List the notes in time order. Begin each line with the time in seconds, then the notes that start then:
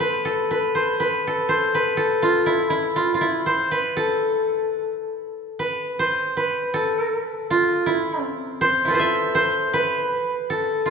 Already playing: A3 A4
0.00 B4
0.25 A4
0.51 B4
0.75 C5
1.00 B4
1.27 A4
1.49 C5
1.75 B4
1.97 A4
2.22 F4
2.46 E4
2.70 E4
2.96 F4
3.14 F4
3.21 E4
3.46 C5
3.71 B4
3.97 A4
5.59 B4
5.99 C5
6.37 B4
6.74 A4
7.50 F4
7.86 E4
8.22 C4
8.61 C5
8.85 E4 F4 A4
8.90 B4 C5
8.99 E5
9.35 C5
9.74 B4
10.50 A4
10.86 F4